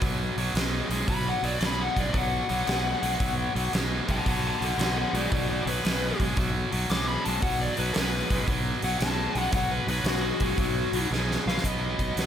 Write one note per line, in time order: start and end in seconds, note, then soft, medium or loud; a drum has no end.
0.01 0.28 B1 loud
0.01 0.34 B2 medium
0.01 0.34 F#3 medium
0.01 kick loud
0.01 open hi-hat medium
0.36 0.50 B1 medium
0.36 0.54 B2 medium
0.36 0.54 F#3 medium
0.36 open hi-hat medium
0.54 0.80 B1 medium
0.54 0.87 B2 medium
0.54 0.88 G#3 medium
0.54 snare loud
0.54 open hi-hat medium
0.89 1.03 B1 medium
0.89 1.06 B2 medium
0.89 1.07 G#3 medium
0.89 open hi-hat medium
1.07 1.34 B1 medium
1.07 1.40 B2 medium
1.07 1.40 F#3 loud
1.07 1.26 B5 loud
1.07 kick loud
1.07 open hi-hat medium
1.29 1.45 F#5 medium
1.43 1.56 B1 medium
1.43 1.59 B2 medium
1.43 1.60 F#3 medium
1.43 1.61 D5 loud
1.43 open hi-hat medium
1.60 1.87 B1 loud
1.60 1.93 B2 medium
1.60 1.93 G#3 medium
1.60 snare loud
1.60 open hi-hat medium
1.65 1.81 B5 medium
1.82 1.98 F#5 medium
1.96 2.09 B1 medium
1.96 2.11 B2 medium
1.96 2.12 G#3 medium
1.96 2.15 D5 loud
1.96 kick medium
1.96 open hi-hat medium
2.13 2.40 B1 loud
2.13 2.45 B2 medium
2.13 2.46 F#3 medium
2.13 kick loud
2.13 open hi-hat medium
2.18 3.71 F#5 loud
2.49 2.62 B1 medium
2.49 2.65 B2 medium
2.49 2.65 F#3 medium
2.49 open hi-hat medium
2.67 2.93 B1 medium
2.67 2.99 B2 medium
2.67 3.00 G#3 medium
2.67 snare loud
2.67 open hi-hat medium
3.02 3.15 B1 medium
3.02 3.18 B2 medium
3.02 3.18 G#3 medium
3.02 open hi-hat medium
3.19 3.46 B1 loud
3.19 3.52 B2 medium
3.19 3.52 F#3 loud
3.19 kick loud
3.19 open hi-hat medium
3.55 3.68 B1 medium
3.55 3.71 B2 medium
3.55 3.71 F#3 medium
3.55 open hi-hat medium
3.73 3.99 B1 medium
3.73 4.05 B2 medium
3.73 4.05 G#3 medium
3.73 snare loud
3.73 open hi-hat medium
4.07 4.21 B1 medium
4.07 4.24 B2 medium
4.07 4.24 G#3 medium
4.07 4.27 F#5 medium
4.07 4.27 A5 loud
4.07 kick medium
4.07 open hi-hat medium
4.25 4.52 B1 loud
4.25 4.58 B2 medium
4.25 4.58 F#3 medium
4.25 4.44 F#5 medium
4.25 kick loud
4.25 open hi-hat medium
4.30 4.45 A5 loud
4.47 4.62 F#5 medium
4.47 4.64 A5 medium
4.61 4.74 B1 medium
4.61 4.77 B2 medium
4.61 4.77 F#3 medium
4.61 4.80 A4 medium
4.61 4.80 F#5 loud
4.61 open hi-hat medium
4.77 5.04 B1 loud
4.77 5.10 B2 medium
4.77 5.11 G#3 medium
4.77 4.96 A4 medium
4.77 snare loud
4.77 open hi-hat medium
4.82 4.97 F#5 medium
4.97 5.13 A4 medium
4.97 5.14 F#5 medium
5.13 5.26 B1 loud
5.13 5.30 B2 medium
5.13 5.30 G#3 medium
5.13 5.30 F#4 medium
5.13 5.32 D5 medium
5.13 open hi-hat medium
5.31 5.57 B1 loud
5.31 5.63 B2 medium
5.31 5.63 F#3 medium
5.31 5.48 F#4 medium
5.31 5.49 D5 medium
5.31 kick loud
5.31 open hi-hat medium
5.49 5.66 F#4 medium
5.49 5.67 D5 loud
5.66 5.79 B1 loud
5.66 5.83 B2 medium
5.66 5.83 F#3 loud
5.66 6.19 B4 loud
5.66 open hi-hat medium
5.84 6.10 B1 medium
5.84 6.16 B2 medium
5.84 6.16 G#3 medium
5.84 snare loud
5.84 open hi-hat medium
6.20 6.32 B1 medium
6.20 6.36 B2 medium
6.20 6.36 G#3 medium
6.20 kick medium
6.20 open hi-hat medium
6.37 6.63 B1 loud
6.37 6.69 B2 medium
6.37 6.69 F#3 loud
6.37 kick loud
6.37 open hi-hat medium
6.72 6.85 B1 medium
6.72 6.88 B2 medium
6.72 6.88 F#3 medium
6.72 open hi-hat medium
6.90 7.15 B1 medium
6.90 7.22 B2 medium
6.90 7.22 G#3 medium
6.90 7.07 D6 loud
6.90 snare loud
6.90 open hi-hat medium
7.08 7.24 B5 medium
7.24 7.38 B1 loud
7.24 7.41 B2 medium
7.24 7.41 G#3 medium
7.24 7.42 A5 loud
7.24 open hi-hat medium
7.42 7.68 B1 medium
7.42 7.75 B2 medium
7.42 7.75 F#3 loud
7.42 7.59 F#5 medium
7.42 kick loud
7.42 open hi-hat medium
7.61 7.78 D5 medium
7.77 7.91 B1 loud
7.77 7.93 B2 medium
7.77 7.94 F#3 medium
7.77 7.93 B4 loud
7.77 open hi-hat medium
7.94 8.21 B1 loud
7.94 8.27 B2 medium
7.94 8.27 G#3 medium
7.94 8.46 B4 medium
7.94 snare loud
7.94 open hi-hat medium
8.30 8.43 B1 medium
8.30 8.47 B2 medium
8.30 8.47 G#3 medium
8.30 kick loud
8.30 open hi-hat medium
8.48 8.73 B1 loud
8.48 8.80 B2 medium
8.48 8.80 F#3 loud
8.48 kick loud
8.48 open hi-hat medium
8.82 8.95 B1 medium
8.82 8.99 B2 medium
8.82 8.99 F#3 medium
8.82 8.99 F#5 loud
8.82 open hi-hat medium
8.99 9.26 B1 medium
8.99 9.33 B2 medium
8.99 9.33 G#3 medium
8.99 9.39 A5 loud
8.99 snare loud
8.99 open hi-hat medium
9.35 9.48 B1 loud
9.35 9.52 B2 medium
9.35 9.52 G#3 medium
9.35 9.51 F#5 loud
9.35 open hi-hat medium
9.52 9.78 B1 loud
9.52 9.85 B2 medium
9.52 9.85 F#3 loud
9.52 9.70 F#5 medium
9.52 kick loud
9.52 open hi-hat medium
9.71 9.87 B4 medium
9.87 10.00 B1 loud
9.87 10.04 B2 medium
9.87 10.04 F#3 medium
9.87 10.05 B4 medium
9.87 open hi-hat medium
10.04 10.30 B1 loud
10.04 10.37 B2 medium
10.04 10.37 G#3 medium
10.04 11.08 F#4 loud
10.04 snare loud
10.04 open hi-hat medium
10.40 10.53 B1 medium
10.40 10.57 B2 medium
10.40 10.57 G#3 medium
10.40 kick medium
10.40 open hi-hat medium
10.58 10.83 B1 loud
10.58 10.90 B2 medium
10.58 10.90 F#3 medium
10.58 kick loud
10.58 open hi-hat medium
10.92 11.05 B1 medium
10.92 11.09 B2 medium
10.92 11.09 F#3 medium
10.92 open hi-hat medium
11.11 11.36 B1 loud
11.11 11.43 B2 medium
11.11 11.43 G#3 medium
11.11 snare medium
11.31 snare medium
11.46 11.58 B1 loud
11.46 11.62 B2 medium
11.46 11.63 G#3 medium
11.46 11.65 F5 medium
11.46 snare medium
11.58 snare medium
11.64 11.97 B1 medium
11.64 12.26 B2 medium
11.64 12.26 F#3 medium
11.64 12.26 B3 medium
11.64 12.19 D#5 medium
11.64 kick medium
11.64 closed hi-hat medium
11.99 12.15 B1 medium
11.99 kick medium
11.99 closed hi-hat medium
12.16 12.26 B1 medium
12.16 12.26 B4 medium
12.16 snare loud
12.16 closed hi-hat medium